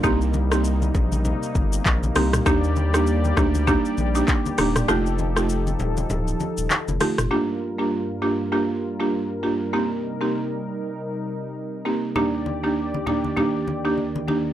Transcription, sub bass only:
X:1
M:4/4
L:1/16
Q:"Swing 16ths" 1/4=99
K:Gm
V:1 name="Sub bass" clef=bass
C,,6 B,,,3 z G,,,2 B,,,2 C,,2 | E,,6 D,,3 z B,,,2 z2 E,,,2 | F,,,6 E,,,2 D,,,2 z E,,, z F,,, z F,,, | z16 |
z16 | z16 |]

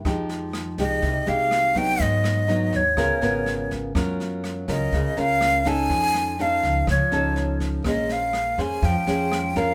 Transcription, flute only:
X:1
M:4/4
L:1/8
Q:1/4=123
K:Fm
V:1 name="Flute"
z3 e2 f2 g | e3 d4 z | z3 e2 f2 a- | a2 f2 ^c3 z |
e f2 a g3 f |]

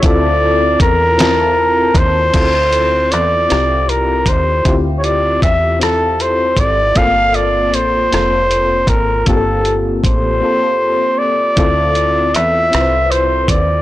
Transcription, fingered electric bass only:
X:1
M:6/8
L:1/8
Q:3/8=52
K:Dm
V:1 name="Fingered electric bass" clef=bass
D,,2 E,,3 _E,, | D,,2 E,, C,,2 _E,, | D,,2 E,,3 ^G,,, | G,,,2 A,,, F,,,2 ^G,,, |
G,,,2 A,,, z3 | D,,2 E,, C,,2 _E,, |]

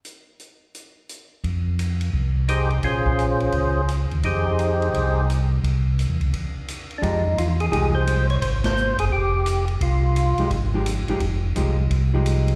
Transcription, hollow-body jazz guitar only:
X:1
M:4/4
L:1/8
Q:"Swing" 1/4=172
K:Fm
V:1 name="Hollow-body jazz guitar"
z8 | z8 | z8 | z8 |
z8 | [F,A,EG] z3 [F,A,EG]3 z | z8 | z3 [F,A,EG] z [F,A,EG] z [F,A,EG] |
z2 [F,A,EG] z2 [F,A,EG]3 |]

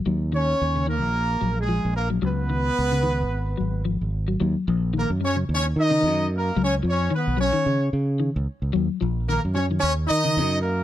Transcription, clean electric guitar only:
X:1
M:4/4
L:1/16
Q:"Swing 16ths" 1/4=111
K:Ebm
V:1 name="Clean electric guitar" clef=bass
G,2 E,2 z D, E,2 z2 G,2 F,2 z G, | G,2 E,2 z D, E,2 z2 G,2 F,2 z G, | G,2 F,2 E,2 G, D,2 z2 D, E,2 z2 | G,2 F,2 E,2 G, E,2 z3 E,2 z2 |
G,2 F,2 E,2 G, E,2 z2 D, D,2 z2 |]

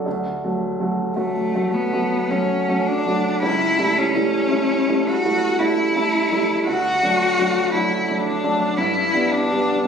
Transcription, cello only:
X:1
M:3/4
L:1/8
Q:1/4=55
K:Amix
V:1 name="Cello"
z2 A, B, C D | E C2 F E2 | F2 E D E D |]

